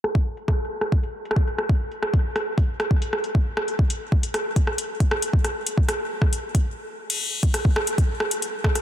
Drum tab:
CC |--------------------------------|--------------------------------|--------------------------------|--------------------------------|
HH |------x----x--x---x---x---x---x-|--x---x---x---x---x---x---x-----|--x---x-----x-x---x---x---x---x-|--x---x---x-------x---x---------|
SD |r-------r-----r--------r----r---|----r-----r-------r-----r-------|r-------------r-----r-------r---|--r-------r-----r---------------|
BD |--o-----o-------o-------o-----o-|------o-------o-----o-------o---|----o-----o-------o-------o-----|o-------o-------o-----o---------|

CC |x-------------------------------|
HH |x-----x-x-----x-x-----x-x-----x-|
SD |--------r---r-------r-------r-r-|
BD |------o---o-----o-----------o---|